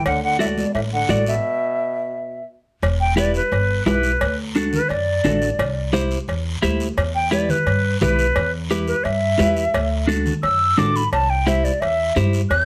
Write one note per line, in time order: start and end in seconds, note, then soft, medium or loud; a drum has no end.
0.06 0.61 D2 medium
0.06 0.22 D3 medium
0.06 0.22 F#5 medium
0.06 cowbell loud
0.06 long guiro medium
0.23 0.40 D3 medium
0.23 0.39 F#5 loud
0.39 0.48 A2 medium
0.39 0.64 F#4 medium
0.39 0.65 A4 medium
0.39 0.65 D5 medium
0.39 0.46 E5 medium
0.39 high conga medium
0.39 short guiro medium
0.57 0.74 B2 medium
0.57 0.74 D5 medium
0.57 high conga medium
0.57 short guiro medium
0.74 1.03 A1 medium
0.74 0.82 A2 medium
0.74 0.80 E5 medium
0.74 cowbell medium
0.74 long guiro medium
0.93 1.13 D3 medium
0.93 1.12 F#5 medium
1.09 1.37 A1 loud
1.09 1.27 A2 medium
1.09 1.34 F#4 medium
1.09 1.34 A4 medium
1.09 1.27 D5 medium
1.09 1.34 D5 medium
1.09 high conga medium
1.09 short guiro medium
1.26 2.44 B2 medium
1.26 2.45 E5 medium
1.26 short guiro medium
2.82 3.38 E1 loud
2.82 cowbell loud
2.82 high conga soft
2.82 long guiro medium
3.00 3.17 G5 loud
3.17 3.41 E4 medium
3.17 3.41 G4 medium
3.17 3.42 B4 medium
3.17 3.35 D5 loud
3.17 high conga medium
3.17 short guiro medium
3.34 3.86 B4 medium
3.34 short guiro medium
3.52 3.80 G1 medium
3.52 cowbell medium
3.52 high conga soft
3.52 long guiro medium
3.86 4.14 B1 medium
3.86 4.11 E4 medium
3.86 4.11 G4 medium
3.86 4.11 B4 medium
3.86 4.37 B4 medium
3.86 high conga medium
3.86 low timbale medium
3.86 short guiro medium
4.03 short guiro medium
4.21 4.76 D2 loud
4.21 cowbell loud
4.21 high conga soft
4.21 long guiro medium
4.55 4.80 D4 medium
4.55 4.80 F#4 medium
4.55 4.80 A4 medium
4.55 high conga medium
4.55 short guiro medium
4.73 4.90 B4 medium
4.73 low conga medium
4.73 short guiro medium
4.89 5.18 F#2 medium
4.89 5.90 D5 medium
4.89 cowbell medium
4.89 high conga soft
4.89 long guiro medium
5.24 5.52 A1 loud
5.24 5.49 D4 medium
5.24 5.49 F#4 medium
5.24 5.49 A4 medium
5.24 high conga medium
5.24 low conga medium
5.24 low timbale medium
5.24 short guiro medium
5.42 short guiro medium
5.59 6.14 C2 loud
5.59 cowbell loud
5.59 high conga soft
5.59 long guiro medium
5.93 6.18 E4 medium
5.93 6.18 G4 medium
5.93 6.18 C5 loud
5.93 high conga medium
5.93 short guiro medium
6.11 short guiro medium
6.28 6.56 E2 medium
6.28 cowbell medium
6.28 high conga soft
6.28 long guiro medium
6.62 6.91 D2 loud
6.62 6.87 E4 medium
6.62 6.87 G4 loud
6.62 6.87 C5 medium
6.62 high conga medium
6.62 short guiro medium
6.80 short guiro medium
6.97 7.53 E2 medium
6.97 cowbell loud
6.97 high conga soft
6.97 long guiro medium
7.15 7.32 G5 loud
7.31 7.56 E4 medium
7.31 7.56 G4 medium
7.31 7.56 B4 medium
7.31 7.52 D5 medium
7.31 high conga medium
7.31 short guiro medium
7.49 8.00 B4 medium
7.49 low conga medium
7.49 short guiro medium
7.66 7.94 G2 medium
7.66 cowbell medium
7.66 high conga soft
7.66 long guiro medium
8.01 8.29 B1 loud
8.01 8.26 E4 medium
8.01 8.26 G4 medium
8.01 8.52 B4 medium
8.01 8.26 B4 medium
8.01 high conga medium
8.01 low conga medium
8.01 short guiro medium
8.19 short guiro medium
8.36 8.91 E2 loud
8.36 cowbell loud
8.36 high conga soft
8.36 long guiro medium
8.70 8.95 E4 medium
8.70 8.95 G4 loud
8.70 8.95 B4 loud
8.70 high conga medium
8.70 short guiro medium
8.87 9.06 B4 medium
8.87 short guiro medium
9.04 9.33 G2 medium
9.04 10.05 E5 medium
9.04 cowbell medium
9.04 high conga soft
9.04 long guiro medium
9.39 9.67 E2 medium
9.39 9.63 E4 medium
9.39 9.64 G4 medium
9.39 9.64 B4 medium
9.39 high conga medium
9.39 low timbale medium
9.39 short guiro medium
9.57 short guiro medium
9.74 10.29 D2 loud
9.74 cowbell loud
9.74 high conga soft
9.74 long guiro medium
10.07 10.32 D4 medium
10.07 10.33 F#4 medium
10.07 10.33 A4 loud
10.07 high conga medium
10.07 short guiro medium
10.26 low conga medium
10.26 short guiro medium
10.43 10.71 F#2 medium
10.43 10.80 E6 loud
10.43 cowbell medium
10.43 high conga soft
10.43 long guiro medium
10.78 11.06 A1 medium
10.78 11.02 D4 medium
10.78 11.02 F#4 medium
10.78 11.02 A4 medium
10.78 10.98 D6 medium
10.78 high conga medium
10.78 low conga medium
10.78 low timbale medium
10.78 short guiro medium
10.96 11.12 B5 loud
10.96 short guiro medium
11.12 11.68 C2 loud
11.12 11.31 A5 loud
11.12 cowbell loud
11.12 high conga soft
11.12 long guiro medium
11.30 11.49 G5 loud
11.47 11.71 E4 medium
11.47 11.71 G4 medium
11.47 11.71 C5 medium
11.47 11.66 E5 medium
11.47 high conga medium
11.47 short guiro medium
11.64 11.82 D5 medium
11.64 short guiro medium
11.81 12.09 E2 medium
11.81 12.15 E5 loud
11.81 cowbell medium
11.81 high conga soft
11.81 long guiro medium
12.16 12.44 G2 loud
12.16 12.40 E4 medium
12.16 12.41 G4 medium
12.16 12.41 C5 medium
12.16 high conga medium
12.16 short guiro medium
12.33 short guiro medium
12.50 12.65 E2 loud
12.50 12.65 G6 medium
12.50 cowbell loud
12.50 high conga soft
12.50 long guiro medium